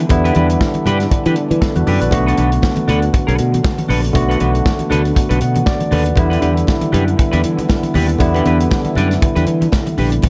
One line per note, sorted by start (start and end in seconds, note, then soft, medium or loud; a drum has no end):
0.00 0.09 D3 medium
0.00 6.13 D3 medium
0.00 2.09 E3 medium
0.00 0.10 G3 medium
0.00 2.09 G3 medium
0.00 0.10 B3 medium
0.00 6.13 B3 medium
0.00 0.11 E4 medium
0.00 muted clean electric guitar stroke medium
0.09 0.30 E2 loud
0.09 1.83 D3 medium
0.09 1.83 G3 medium
0.09 1.84 B3 medium
0.09 2.11 D4 medium
0.09 1.59 E4 medium
0.09 muted clean electric guitar stroke soft
0.09 kick loud
0.09 closed hi-hat medium
0.09 muted conga soft
0.09 low conga medium
0.24 0.34 D4 medium
0.24 0.35 G4 medium
0.24 0.36 B4 medium
0.24 closed hi-hat soft
0.24 muted conga soft
0.34 0.55 E2 loud
0.34 0.48 D4 medium
0.34 0.48 G4 medium
0.34 0.48 B4 medium
0.34 closed hi-hat medium
0.34 high conga medium
0.50 muted clean electric guitar stroke soft
0.50 closed hi-hat medium
0.61 kick loud
0.61 snare loud
0.61 muted conga soft
0.61 high conga medium
0.74 muted clean electric guitar stroke medium
0.74 closed hi-hat soft
0.74 muted conga soft
0.74 high conga medium
0.86 1.06 G2 medium
0.86 1.02 D4 medium
0.86 1.00 G4 loud
0.86 0.99 B4 loud
0.86 closed hi-hat medium
0.86 low conga medium
1.00 muted clean electric guitar stroke soft
1.00 snare soft
1.00 closed hi-hat soft
1.11 muted clean electric guitar stroke soft
1.11 kick loud
1.11 closed hi-hat medium
1.11 muted conga soft
1.26 1.34 E3 loud
1.26 1.35 D4 medium
1.26 1.36 G4 medium
1.26 1.37 B4 medium
1.26 closed hi-hat medium
1.36 closed hi-hat medium
1.50 1.59 E3 medium
1.50 muted clean electric guitar stroke soft
1.50 closed hi-hat soft
1.50 high conga medium
1.61 1.75 E4 soft
1.61 1.75 A4 medium
1.61 muted clean electric guitar stroke soft
1.61 kick loud
1.61 snare loud
1.75 1.85 E2 medium
1.75 1.87 F#4 medium
1.75 1.87 B4 medium
1.75 muted clean electric guitar stroke soft
1.75 closed hi-hat soft
1.75 muted conga soft
1.75 high conga medium
1.87 1.98 F#2 medium
1.87 2.03 D4 medium
1.87 2.02 G4 medium
1.87 2.01 A4 medium
1.87 2.01 B4 medium
1.87 2.01 D5 medium
1.87 open hi-hat medium
1.87 low conga medium
2.01 2.10 A#1 medium
2.01 2.12 F#4 soft
2.01 2.25 B4 medium
2.01 muted clean electric guitar stroke medium
2.01 closed hi-hat medium
2.11 2.32 B1 loud
2.11 4.10 D3 medium
2.11 6.13 F#3 medium
2.11 4.10 A3 medium
2.11 6.13 A3 medium
2.11 4.11 B3 medium
2.11 6.13 F#4 medium
2.11 4.11 F#4 medium
2.11 muted clean electric guitar stroke soft
2.11 kick loud
2.11 closed hi-hat medium
2.11 muted conga soft
2.11 low conga medium
2.26 2.36 D4 medium
2.26 2.37 A4 medium
2.26 2.38 B4 medium
2.26 closed hi-hat soft
2.37 2.57 B1 loud
2.37 2.50 D4 medium
2.37 2.51 A4 medium
2.37 2.51 B4 medium
2.37 closed hi-hat medium
2.37 high conga medium
2.52 closed hi-hat soft
2.62 kick loud
2.62 snare loud
2.62 muted conga soft
2.62 high conga soft
2.76 muted clean electric guitar stroke soft
2.76 closed hi-hat soft
2.76 muted conga soft
2.76 high conga medium
2.88 3.08 D2 medium
2.88 3.04 D4 medium
2.88 3.02 A4 medium
2.88 3.01 B4 medium
2.88 closed hi-hat medium
2.88 low conga medium
3.02 muted clean electric guitar stroke soft
3.02 closed hi-hat soft
3.13 muted clean electric guitar stroke soft
3.13 kick loud
3.13 closed hi-hat medium
3.13 muted conga soft
3.27 3.37 B1 medium
3.27 3.37 D4 medium
3.27 3.38 A4 medium
3.27 3.38 B4 medium
3.27 closed hi-hat soft
3.38 3.59 B2 medium
3.38 muted clean electric guitar stroke soft
3.38 closed hi-hat medium
3.52 muted clean electric guitar stroke soft
3.52 closed hi-hat soft
3.52 high conga medium
3.63 muted clean electric guitar stroke medium
3.63 kick loud
3.63 snare loud
3.78 muted clean electric guitar stroke soft
3.78 closed hi-hat soft
3.78 muted conga soft
3.78 high conga medium
3.88 4.09 A#1 medium
3.88 4.05 D4 medium
3.88 4.03 A4 medium
3.88 4.02 B4 medium
3.88 open hi-hat medium
3.88 low conga medium
4.03 muted clean electric guitar stroke soft
4.03 closed hi-hat soft
4.13 4.35 B1 loud
4.13 6.12 D3 medium
4.13 6.13 A3 medium
4.13 6.13 B3 medium
4.13 6.14 F#4 medium
4.13 muted clean electric guitar stroke soft
4.13 kick loud
4.13 closed hi-hat medium
4.13 low conga medium
4.29 4.38 D4 medium
4.29 4.39 A4 medium
4.29 4.40 B4 medium
4.29 closed hi-hat soft
4.40 4.60 B1 medium
4.40 4.52 D4 medium
4.40 4.53 A4 medium
4.40 4.52 B4 medium
4.40 closed hi-hat soft
4.40 high conga medium
4.53 muted clean electric guitar stroke medium
4.53 closed hi-hat soft
4.66 kick loud
4.66 snare loud
4.66 muted conga soft
4.66 high conga soft
4.79 muted clean electric guitar stroke soft
4.79 closed hi-hat soft
4.79 high conga medium
4.90 5.11 D2 medium
4.90 5.06 D4 medium
4.90 5.04 A4 medium
4.90 5.03 B4 loud
4.90 closed hi-hat medium
4.90 low conga medium
5.04 muted clean electric guitar stroke soft
5.04 closed hi-hat soft
5.15 muted clean electric guitar stroke soft
5.15 kick loud
5.15 closed hi-hat medium
5.29 5.39 B1 loud
5.29 5.40 D4 medium
5.29 5.40 A4 medium
5.29 5.41 B4 medium
5.29 closed hi-hat soft
5.41 5.61 B2 medium
5.41 5.65 F#5 medium
5.41 closed hi-hat medium
5.55 muted clean electric guitar stroke soft
5.55 closed hi-hat soft
5.55 high conga medium
5.66 5.90 D5 medium
5.66 muted clean electric guitar stroke soft
5.66 kick loud
5.66 snare loud
5.66 muted conga soft
5.80 muted clean electric guitar stroke medium
5.80 closed hi-hat soft
5.80 high conga medium
5.91 6.12 D#2 loud
5.91 6.07 D4 medium
5.91 6.05 A4 medium
5.91 6.16 B4 medium
5.91 6.04 B4 loud
5.91 open hi-hat medium
5.91 low conga medium
6.06 muted clean electric guitar stroke soft
6.06 closed hi-hat medium
6.16 6.37 E2 loud
6.16 8.16 D3 medium
6.16 10.07 D3 medium
6.16 10.07 E3 medium
6.16 8.16 G3 medium
6.16 10.07 G3 medium
6.16 8.16 B3 medium
6.16 10.07 B3 medium
6.16 10.07 E4 medium
6.16 8.17 E4 medium
6.16 muted clean electric guitar stroke soft
6.16 kick loud
6.16 closed hi-hat medium
6.16 muted conga soft
6.16 low conga medium
6.30 6.40 D4 medium
6.30 6.41 G4 medium
6.30 6.42 B4 medium
6.30 closed hi-hat soft
6.30 muted conga soft
6.41 6.62 E2 loud
6.41 6.54 D4 medium
6.41 6.55 G4 medium
6.41 6.55 B4 medium
6.41 closed hi-hat medium
6.41 high conga medium
6.56 muted clean electric guitar stroke medium
6.56 closed hi-hat soft
6.67 kick loud
6.67 snare loud
6.67 muted conga soft
6.67 high conga medium
6.81 muted clean electric guitar stroke medium
6.81 closed hi-hat soft
6.81 muted conga soft
6.81 high conga medium
6.92 7.13 F#2 loud
6.92 7.08 D4 medium
6.92 7.06 G4 loud
6.92 7.05 B4 loud
6.92 closed hi-hat medium
6.92 low conga medium
7.06 muted clean electric guitar stroke soft
7.06 closed hi-hat soft
7.17 muted clean electric guitar stroke soft
7.17 kick loud
7.17 closed hi-hat medium
7.17 muted conga soft
7.32 7.42 E2 loud
7.32 7.42 D4 medium
7.32 7.43 G4 medium
7.32 7.43 B4 loud
7.32 closed hi-hat soft
7.32 muted conga soft
7.44 7.64 E3 medium
7.44 closed hi-hat medium
7.57 muted clean electric guitar stroke medium
7.57 closed hi-hat soft
7.57 high conga medium
7.69 muted clean electric guitar stroke soft
7.69 kick loud
7.69 snare loud
7.69 muted conga soft
7.83 muted clean electric guitar stroke soft
7.83 closed hi-hat soft
7.83 muted conga soft
7.83 high conga medium
7.94 8.15 D#2 medium
7.94 8.10 D4 medium
7.94 8.09 G4 medium
7.94 8.07 B4 medium
7.94 open hi-hat medium
7.94 low conga medium
8.09 muted clean electric guitar stroke soft
8.09 closed hi-hat medium
8.18 8.40 E2 loud
8.18 10.19 D3 medium
8.18 10.19 G3 medium
8.18 10.20 B3 medium
8.18 10.20 E4 medium
8.18 muted clean electric guitar stroke soft
8.18 kick loud
8.18 closed hi-hat medium
8.18 low conga medium
8.34 8.44 D4 medium
8.34 8.46 G4 medium
8.34 8.46 B4 medium
8.34 closed hi-hat soft
8.34 muted conga soft
8.45 8.66 E2 loud
8.45 8.58 D4 medium
8.45 8.59 G4 medium
8.45 8.59 B4 medium
8.45 closed hi-hat soft
8.45 high conga medium
8.60 muted clean electric guitar stroke soft
8.60 closed hi-hat soft
8.71 kick loud
8.71 snare loud
8.71 muted conga soft
8.71 high conga medium
8.85 muted clean electric guitar stroke soft
8.85 closed hi-hat soft
8.85 muted conga soft
8.85 high conga medium
8.95 9.16 F#2 medium
8.95 9.12 D4 medium
8.95 9.10 G4 medium
8.95 9.09 B4 loud
8.95 closed hi-hat medium
8.95 low conga medium
9.11 muted clean electric guitar stroke soft
9.11 snare soft
9.11 closed hi-hat soft
9.21 muted clean electric guitar stroke soft
9.21 kick loud
9.21 closed hi-hat medium
9.21 muted conga soft
9.35 9.45 E2 loud
9.35 9.46 D4 medium
9.35 9.46 G4 medium
9.35 9.47 B4 medium
9.35 closed hi-hat soft
9.35 muted conga soft
9.46 9.67 E3 loud
9.46 closed hi-hat medium
9.61 muted clean electric guitar stroke soft
9.61 closed hi-hat soft
9.61 high conga medium
9.72 muted clean electric guitar stroke soft
9.72 kick loud
9.72 snare loud
9.72 muted conga soft
9.86 muted clean electric guitar stroke soft
9.86 closed hi-hat soft
9.86 high conga medium
9.98 10.18 A#1 medium
9.98 10.14 D4 medium
9.98 10.12 G4 medium
9.98 10.11 B4 medium
9.98 open hi-hat medium
9.98 low conga medium
10.12 muted clean electric guitar stroke soft
10.12 closed hi-hat medium
10.22 10.29 B1 loud
10.22 10.29 B2 medium
10.22 10.29 F#3 medium
10.22 10.29 A3 medium
10.22 10.29 B3 medium
10.22 10.29 F#4 medium
10.22 muted clean electric guitar stroke soft
10.22 kick loud
10.22 closed hi-hat medium
10.22 muted conga soft